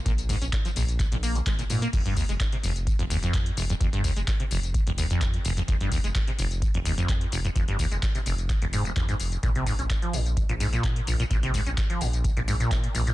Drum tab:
CC |----------------|x---------------|----------------|----------------|
HH |xxoxxxoxxxoxxxox|xxoxxxoxxxoxxxox|xxoxxxoxxxoxxxox|xxoxxxoxxxoxxxox|
TB |xxxxxxxxx-xxxxxx|x-xxx-xxx-xxx-xx|x-xxx-xxx-xxx-xx|x-xxx-xxx-xxx-xx|
CP |----x---x---x---|----x-------x---|----x-------x---|----x-------x---|
BD |o-o-o---o---o---|o-o-o---o---o---|o-o-o---o---o---|o-o-o---o---o---|

CC |----------------|----------------|----------------|
HH |xxoxxxoxxxoxxxox|xxoxxxoxxxoxxxox|xxoxxxoxxxoxxxox|
TB |x-xxxxxxx-xxxxxx|x-xxx-xxx-xxx-xx|x-xxx-xxx-xxx-xx|
CP |----x---x---x---|----x-------x---|----x-------x---|
BD |o-o-o---o---o---|o-o-o---o---o---|o-o-o---o---o---|